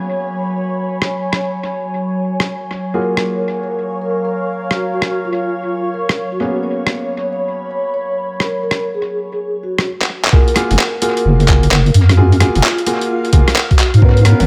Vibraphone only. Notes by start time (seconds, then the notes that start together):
2.94 A#4
3.32 A#4
3.63 A#4
4.02 A#4
4.25 A#4
4.71 F#4
4.94 F#4
5.25 F4
5.63 F4
5.94 A#4
6.32 F#4
6.63 C#5
7.02 C#5
7.33 C#5
7.71 C#5
7.94 C#5
8.40 A#4
8.63 A#4
8.94 G#4
9.32 G#4
9.63 F#4
10.33 A#4
10.71 A#4
11.02 A#4
11.40 A#4
11.63 A#4
12.09 F#4
12.32 F#4
12.63 F4
13.01 F4
13.33 A#4
13.71 F#4
14.02 B4
14.40 B4